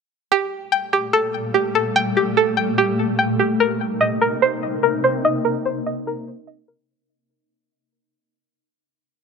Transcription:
0.31 3.57 A#2 medium
0.31 3.57 G3 medium
0.31 3.57 A3 medium
0.31 0.92 G4 loud
0.72 1.95 G5 medium
0.93 1.53 G4 medium
1.13 1.74 A4 medium
1.54 2.16 G4 medium
1.75 2.36 A4 medium
1.96 2.56 G5 loud
2.17 2.77 G4 medium
2.37 3.60 A4 medium
2.57 3.17 G5 medium
2.78 3.38 G4 medium
3.19 3.60 G5 medium
3.39 3.60 G4 medium
3.60 6.86 C3 medium
3.60 6.86 A#3 medium
3.60 6.86 D#4 medium
3.60 4.20 A#4 loud
4.01 5.23 D#5 medium
4.21 4.82 A#4 medium
4.42 5.03 C5 medium
4.83 5.43 A#4 medium
5.04 5.64 C5 medium
5.25 5.85 D#5 loud
5.45 6.06 A#4 medium
5.65 6.89 C5 medium
5.86 6.46 D#5 medium
6.07 6.67 A#4 loud
6.47 6.89 D#5 medium
6.68 6.89 A#4 medium

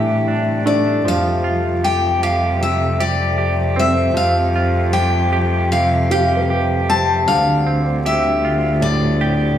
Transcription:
0.00 1.00 A2 medium
0.00 1.07 A2 medium
0.00 7.22 C3 medium
0.00 1.08 E3 medium
0.00 9.58 G3 medium
0.00 7.22 A3 medium
0.00 1.82 C4 medium
0.00 0.27 D4 soft
0.00 1.00 D4 medium
0.00 1.06 E4 medium
0.00 1.84 G4 medium
0.00 0.63 E5 medium
0.28 1.06 D4 medium
0.65 1.05 A3 medium
0.65 1.39 D4 medium
0.65 1.06 D5 medium
1.05 7.29 F2 medium
1.05 4.14 F3 medium
1.05 9.58 G4 medium
1.05 1.84 F5 medium
1.44 4.55 F4 soft
1.84 2.23 G4 medium
1.84 2.23 G5 medium
2.23 3.00 G4 medium
2.23 2.62 F5 medium
2.61 4.17 C3 medium
2.61 3.02 E5 medium
3.00 3.38 G4 medium
3.00 3.80 D5 medium
3.38 4.93 G4 medium
3.76 6.89 C4 medium
3.76 5.34 C4 medium
3.76 4.16 E5 medium
4.14 9.58 F3 medium
4.14 4.93 F5 medium
4.56 8.06 F4 medium
4.93 5.32 G4 medium
4.93 5.71 G5 medium
5.33 6.11 G4 medium
5.72 7.27 C3 medium
5.72 6.10 F5 medium
6.10 7.61 G4 medium
6.10 6.50 G4 medium
6.10 6.84 F5 medium
6.36 7.83 B4 soft
6.50 8.05 G4 medium
6.89 7.31 C4 medium
6.89 7.27 A5 medium
7.27 9.58 D2 medium
7.27 9.58 D3 medium
7.27 9.58 C4 medium
7.27 8.06 F5 medium
7.67 9.58 C4 medium
8.06 9.21 G4 medium
8.06 8.85 E5 medium
8.45 9.58 F4 medium
8.81 9.58 A2 medium
8.81 9.58 D5 medium
9.21 9.58 G4 medium

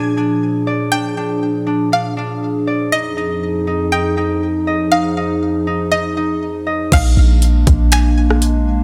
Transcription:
0.00 2.88 A#2 medium
0.00 2.88 F3 medium
0.00 0.17 D4 medium
0.00 2.88 D4 medium
0.00 6.88 G#4 medium
0.00 0.88 G#5 medium
0.17 0.91 D4 medium
0.67 2.52 D5 medium
0.92 1.17 D4 medium
0.92 1.88 G5 loud
1.17 1.66 D4 medium
1.67 1.92 D4 medium
1.92 2.17 D4 medium
1.92 2.89 F5 medium
2.17 2.98 D4 medium
2.67 2.98 D5 medium
2.92 6.88 F2 medium
2.92 6.88 F3 medium
2.92 3.16 D#4 medium
2.92 6.88 D#4 medium
2.92 3.88 D#5 loud
3.17 3.67 D#4 medium
3.67 3.92 D#4 medium
3.92 4.17 D#4 medium
3.92 4.88 G5 medium
4.17 4.91 D#4 medium
4.67 6.46 D#5 medium
4.92 5.17 D#4 medium
4.92 5.88 F5 medium
5.17 5.67 D#4 medium
5.67 5.92 D#4 medium
5.92 6.16 D#4 medium
5.92 6.88 D#5 medium
6.17 8.84 D#4 medium
6.67 8.45 D#5 medium
6.92 7.16 A#1 loud
6.92 8.84 G#3 medium
6.92 8.84 A#3 medium
6.92 8.84 D4 medium
6.92 7.89 F5 loud
6.92 kick loud
6.92 closed hi-hat medium
6.92 crash loud
7.17 7.65 A#1 loud
7.42 closed hi-hat medium
7.67 8.84 A#1 loud
7.67 kick loud
7.67 closed hi-hat medium
7.92 8.84 G#5 medium
7.92 finger snap loud
7.92 closed hi-hat medium
8.30 cross-stick medium
8.42 closed hi-hat medium

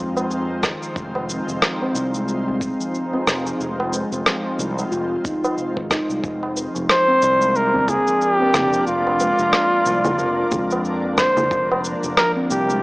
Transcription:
0.00 0.72 F2 medium
0.00 6.20 G#3 medium
0.00 6.19 C4 medium
0.00 6.19 D#4 medium
0.00 6.19 F4 medium
0.00 6.19 C5 medium
0.17 tabla na medium
0.17 cabasa soft
0.30 0.62 F3 medium
0.30 cabasa soft
0.49 tabla tin medium
0.63 0.82 D#3 medium
0.63 kick loud
0.63 cross-stick medium
0.63 cabasa medium
0.83 cabasa soft
0.96 1.38 F1 loud
0.96 1.14 F3 medium
0.96 kick loud
0.96 cabasa soft
1.15 tabla na medium
1.15 tabla tin medium
1.30 tabla tin soft
1.30 cabasa medium
1.48 1.58 F1 medium
1.48 1.80 F3 medium
1.48 cabasa soft
1.62 cross-stick medium
1.62 cabasa soft
1.81 1.95 C4 medium
1.81 tabla na soft
1.95 2.70 C2 loud
1.95 cabasa medium
2.14 2.45 G#3 medium
2.14 cabasa soft
2.28 cabasa soft
2.47 2.78 C4 medium
2.47 tabla ge medium
2.61 kick loud
2.61 tabla tin soft
2.61 cabasa medium
2.80 3.11 F3 medium
2.80 cabasa soft
2.95 cabasa soft
3.13 3.27 C4 medium
3.13 tabla na soft
3.13 tabla tin medium
3.27 3.51 F1 medium
3.27 cross-stick medium
3.27 cabasa medium
3.46 3.92 F3 medium
3.46 cabasa soft
3.60 4.02 F1 medium
3.60 cabasa soft
3.79 tabla na medium
3.79 tabla tin medium
3.93 4.04 G#3 medium
3.93 tabla tin soft
3.93 cabasa medium
4.12 4.22 F1 medium
4.12 cabasa soft
4.26 4.58 F3 medium
4.26 cross-stick medium
4.26 cabasa soft
4.59 4.83 C2 loud
4.59 4.91 F3 medium
4.59 cabasa medium
4.78 tabla na soft
4.78 cabasa soft
4.92 5.16 F1 medium
4.92 5.10 F4 loud
4.92 cabasa soft
5.24 5.43 D#4 medium
5.24 kick loud
5.24 tabla ge medium
5.24 cabasa medium
5.44 tabla na medium
5.44 cabasa soft
5.57 5.75 C3 medium
5.57 cabasa soft
5.77 5.98 G#1 medium
5.77 kick medium
5.77 tabla tin soft
5.91 6.08 D#4 medium
5.91 kick loud
5.91 cross-stick medium
5.91 cabasa medium
6.10 6.19 C2 medium
6.10 cabasa soft
6.23 6.66 F1 medium
6.23 6.42 F3 medium
6.23 12.83 F3 medium
6.23 12.83 A#3 medium
6.23 12.83 D4 medium
6.23 12.83 A#4 medium
6.23 11.47 D5 medium
6.23 kick loud
6.23 cabasa soft
6.43 tabla na medium
6.43 tabla tin medium
6.57 tabla tin soft
6.57 cabasa medium
6.75 6.85 F1 medium
6.75 7.06 F3 medium
6.75 cabasa soft
6.89 7.58 C5 loud
6.89 cross-stick medium
6.89 cabasa soft
7.08 7.22 C4 medium
7.08 tabla na soft
7.22 7.98 C2 loud
7.22 cabasa medium
7.41 7.73 G#3 medium
7.41 cabasa soft
7.55 7.91 A#4 loud
7.55 cabasa soft
7.73 8.05 C4 medium
7.73 tabla ge medium
7.88 8.24 G#4 loud
7.88 kick medium
7.88 low conga medium
7.88 cabasa medium
8.07 8.38 F3 medium
8.07 cabasa soft
8.21 8.87 G4 loud
8.21 cabasa soft
8.40 8.54 C4 medium
8.40 tabla na soft
8.40 tabla tin soft
8.54 8.79 F1 medium
8.54 cross-stick medium
8.54 low conga medium
8.54 cabasa medium
8.73 9.19 F3 medium
8.73 cabasa soft
8.87 9.30 F1 medium
8.87 10.88 F4 loud
8.87 cabasa soft
9.06 tabla na medium
9.06 tabla tin soft
9.20 9.31 G#3 medium
9.20 tabla tin medium
9.20 cabasa medium
9.39 9.49 F1 medium
9.39 cabasa soft
9.53 9.85 F3 medium
9.53 cross-stick medium
9.53 cabasa soft
9.86 10.10 C2 medium
9.86 10.18 F3 medium
9.86 cabasa medium
10.05 tabla na medium
10.05 low conga medium
10.05 cabasa soft
10.19 10.44 F1 medium
10.19 10.37 F4 loud
10.19 cabasa soft
10.51 11.27 F2 medium
10.51 10.63 G#3 medium
10.51 kick loud
10.51 low conga medium
10.51 tabla ge medium
10.51 cabasa medium
10.71 tabla na medium
10.71 cabasa soft
10.85 11.17 F3 medium
10.85 cabasa soft
11.04 tabla tin medium
11.18 11.36 D3 medium
11.18 11.80 C5 loud
11.18 kick loud
11.18 cross-stick medium
11.18 cabasa medium
11.37 low conga medium
11.37 cabasa soft
11.51 11.93 F1 loud
11.51 11.69 F3 medium
11.51 12.83 C5 medium
11.51 kick loud
11.51 cabasa soft
11.71 tabla na medium
11.71 tabla tin soft
11.84 tabla tin medium
11.84 cabasa medium
12.03 12.13 F1 medium
12.03 12.34 F3 medium
12.03 cabasa soft
12.17 12.32 A#4 loud
12.17 cross-stick medium
12.17 cabasa soft
12.36 12.49 C4 medium
12.36 tabla na soft
12.51 12.83 C2 loud
12.51 12.83 G4 medium
12.51 cabasa medium
12.69 12.83 G#3 medium
12.69 cabasa soft

